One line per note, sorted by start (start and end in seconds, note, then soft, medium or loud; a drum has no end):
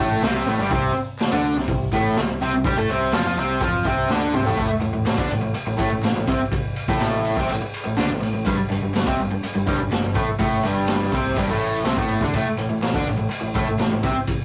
0.00 0.21 A1 loud
0.00 0.22 A2 medium
0.00 0.22 A3 loud
0.22 0.45 C2 loud
0.22 0.46 C3 loud
0.22 0.47 C4 medium
0.22 snare medium
0.22 clap medium
0.22 open hi-hat medium
0.46 0.58 A1 loud
0.46 0.59 A2 medium
0.46 0.59 A3 loud
0.46 open hi-hat medium
0.59 0.70 G1 medium
0.59 0.70 G2 medium
0.59 0.71 G3 loud
0.71 0.93 C2 loud
0.71 0.94 C3 loud
0.71 0.95 C4 loud
0.71 kick loud
0.71 open hi-hat medium
0.95 muted overdriven electric guitar stroke medium
0.95 muted picked electric bass stroke soft
0.95 open hi-hat medium
1.19 snare loud
1.19 clap medium
1.19 open hi-hat medium
1.32 1.55 D2 loud
1.32 1.55 D3 medium
1.32 1.56 D4 loud
1.44 open hi-hat medium
1.56 1.67 C2 medium
1.56 1.68 C3 medium
1.56 snare soft
1.68 1.91 C2 medium
1.68 1.88 C3 medium
1.68 kick loud
1.68 open hi-hat medium
1.92 2.14 A1 medium
1.92 2.16 A2 medium
1.92 2.17 A3 medium
1.92 kick medium
1.92 clap medium
1.92 open hi-hat medium
2.16 2.40 C2 medium
2.16 2.37 C3 medium
2.16 snare medium
2.16 clap medium
2.16 open hi-hat medium
2.40 2.53 C2 loud
2.40 2.52 C3 medium
2.40 2.53 C4 loud
2.40 open hi-hat medium
2.54 2.63 C2 medium
2.54 2.65 C3 medium
2.64 2.76 G2 medium
2.64 2.76 G3 loud
2.64 2.77 G4 loud
2.64 kick loud
2.64 open hi-hat medium
2.77 2.88 A2 medium
2.77 2.88 A3 medium
2.77 2.89 A4 medium
2.88 3.12 C2 loud
2.88 3.13 C3 loud
2.88 3.13 C4 medium
2.88 open hi-hat medium
3.12 3.25 F2 medium
3.12 3.23 F3 loud
3.12 3.25 F4 medium
3.12 snare loud
3.12 clap loud
3.12 open hi-hat medium
3.24 3.36 F2 medium
3.24 3.36 F3 loud
3.24 3.37 F4 loud
3.37 3.60 C2 medium
3.37 3.61 C3 medium
3.37 3.62 C4 medium
3.37 open hi-hat medium
3.61 3.84 F2 medium
3.61 3.85 F3 loud
3.61 3.86 F4 loud
3.61 kick loud
3.61 open hi-hat medium
3.84 4.08 C2 loud
3.84 4.09 C3 medium
3.84 4.10 C4 medium
3.84 kick medium
3.84 clap medium
3.84 open hi-hat medium
4.09 4.33 D2 loud
4.09 4.34 D3 loud
4.09 4.35 D4 loud
4.09 snare medium
4.09 clap loud
4.33 4.46 C2 loud
4.33 4.45 C3 medium
4.33 4.47 C4 medium
4.33 mid tom medium
4.45 4.57 A1 medium
4.45 4.56 A2 medium
4.45 4.58 A3 medium
4.45 floor tom medium
4.57 4.69 A1 loud
4.57 4.68 A2 loud
4.57 4.71 A3 loud
4.57 kick loud
4.57 ride medium
4.69 muted overdriven electric guitar stroke soft
4.69 muted picked electric bass stroke soft
4.81 4.94 A1 medium
4.81 4.92 A2 medium
4.81 ride medium
4.93 5.06 A1 medium
4.93 5.05 A2 medium
5.06 5.17 A1 medium
5.06 5.17 A2 medium
5.06 snare loud
5.06 clap medium
5.06 ride medium
5.18 5.30 D2 medium
5.18 5.29 D3 medium
5.18 5.31 D4 loud
5.18 kick loud
5.29 5.42 A1 medium
5.29 5.41 A2 medium
5.29 ride medium
5.42 5.54 A1 medium
5.42 5.54 A2 medium
5.54 muted overdriven electric guitar stroke medium
5.54 muted picked electric bass stroke soft
5.54 ride medium
5.67 5.78 A1 medium
5.67 5.77 A2 medium
5.78 5.89 A1 loud
5.78 5.90 A2 medium
5.78 5.91 A3 medium
5.78 kick medium
5.78 ride medium
5.90 6.02 A1 medium
5.90 6.03 A2 medium
6.03 6.15 A1 medium
6.03 6.16 A2 medium
6.03 snare loud
6.03 clap medium
6.03 ride medium
6.16 6.27 A1 medium
6.16 6.27 A2 medium
6.27 6.39 C2 loud
6.27 6.39 C3 medium
6.27 6.40 C4 medium
6.27 kick loud
6.27 ride medium
6.52 kick loud
6.52 ride medium
6.76 ride medium
6.88 7.33 A1 medium
6.88 7.37 A2 medium
6.88 7.37 A3 loud
6.88 kick loud
7.00 snare loud
7.00 clap medium
7.00 ride loud
7.24 ride medium
7.36 7.48 C2 loud
7.36 7.49 C3 medium
7.36 7.49 C4 medium
7.36 kick medium
7.36 snare soft
7.49 7.61 A1 medium
7.49 7.61 A2 medium
7.49 ride medium
7.61 muted picked electric bass stroke soft
7.61 muted overdriven electric guitar stroke medium
7.74 ride medium
7.85 7.98 A1 medium
7.85 7.96 A2 medium
7.97 8.09 D2 loud
7.97 8.09 D3 loud
7.97 8.10 D4 loud
7.97 snare medium
7.97 clap medium
7.97 ride medium
8.10 8.21 A1 medium
8.10 8.20 A2 medium
8.21 8.33 A1 medium
8.21 8.33 A2 medium
8.21 ride medium
8.34 8.46 A1 medium
8.34 8.46 A2 medium
8.45 8.58 G1 medium
8.45 8.57 G2 medium
8.45 8.58 G3 loud
8.45 kick loud
8.45 ride medium
8.59 muted overdriven electric guitar stroke soft
8.59 muted picked electric bass stroke soft
8.70 8.82 G1 medium
8.70 8.81 G2 medium
8.70 ride medium
8.82 8.94 G1 medium
8.82 8.94 G2 medium
8.94 9.06 G1 medium
8.94 9.07 G2 medium
8.94 snare loud
8.94 clap loud
8.94 ride medium
9.06 9.18 C2 medium
9.06 9.18 C3 loud
9.06 9.19 C4 loud
9.06 kick loud
9.19 9.31 G1 medium
9.19 9.30 G2 medium
9.19 ride medium
9.32 9.42 G1 medium
9.32 9.43 G2 medium
9.43 muted picked electric bass stroke soft
9.43 muted overdriven electric guitar stroke medium
9.43 ride medium
9.55 9.66 G1 medium
9.55 9.65 G2 medium
9.66 9.78 G1 medium
9.66 9.78 G2 medium
9.66 9.79 G3 medium
9.66 kick loud
9.66 ride medium
9.79 9.91 G1 medium
9.79 9.90 G2 medium
9.91 10.03 G1 medium
9.91 10.03 G2 medium
9.91 snare loud
9.91 clap medium
9.91 ride medium
10.04 10.14 G1 medium
10.04 10.16 G2 medium
10.14 10.27 A1 loud
10.14 10.27 A2 medium
10.14 10.27 A3 medium
10.14 kick loud
10.14 ride medium
10.39 10.62 A1 medium
10.39 10.63 A2 loud
10.39 10.64 A3 loud
10.39 kick loud
10.39 ride medium
10.63 11.10 G1 medium
10.63 11.11 G2 medium
10.63 11.12 G3 loud
10.63 ride medium
10.87 snare loud
10.87 clap loud
10.87 ride loud
11.12 11.35 C2 loud
11.12 11.36 C3 medium
11.12 11.37 C4 loud
11.12 kick loud
11.12 clap medium
11.12 ride medium
11.25 snare soft
11.36 11.49 G2 loud
11.36 11.49 G3 loud
11.36 kick loud
11.36 ride loud
11.49 11.83 A1 loud
11.49 11.85 A2 medium
11.49 11.86 A3 medium
11.60 ride medium
11.84 11.96 C2 loud
11.84 11.97 C3 medium
11.84 11.97 C4 medium
11.84 snare loud
11.84 clap medium
11.84 ride medium
11.97 12.20 A1 loud
11.97 12.21 A2 medium
11.97 12.22 A3 medium
11.97 kick loud
12.08 ride medium
12.21 12.33 D2 medium
12.21 12.34 D3 medium
12.21 12.35 D4 medium
12.21 kick loud
12.34 12.45 A1 medium
12.34 12.46 A2 loud
12.34 12.47 A3 loud
12.34 kick medium
12.34 ride medium
12.46 muted picked electric bass stroke soft
12.46 muted overdriven electric guitar stroke soft
12.58 12.69 A1 medium
12.58 12.69 A2 medium
12.58 ride medium
12.69 12.81 A1 medium
12.69 12.82 A2 medium
12.81 12.93 A1 medium
12.81 12.94 A2 medium
12.81 snare loud
12.81 clap medium
12.81 ride medium
12.94 13.06 D2 medium
12.94 13.06 D3 medium
12.94 13.07 D4 loud
12.94 kick medium
13.07 13.18 A1 medium
13.07 13.16 A2 medium
13.07 ride medium
13.18 13.30 A1 medium
13.18 13.29 A2 medium
13.30 muted overdriven electric guitar stroke medium
13.30 ride medium
13.41 13.54 A1 medium
13.41 13.54 A2 medium
13.55 13.67 A1 medium
13.55 13.66 A2 medium
13.55 13.68 A3 loud
13.55 kick loud
13.55 ride medium
13.67 13.79 A1 medium
13.67 13.78 A2 medium
13.79 13.91 A1 medium
13.79 13.91 A2 medium
13.79 snare medium
13.79 clap medium
13.79 ride medium
13.92 14.03 A1 medium
13.92 14.03 A2 medium
14.03 14.15 C2 loud
14.03 14.15 C3 medium
14.03 14.16 C4 loud
14.03 kick medium
14.03 ride medium
14.27 kick loud
14.27 ride medium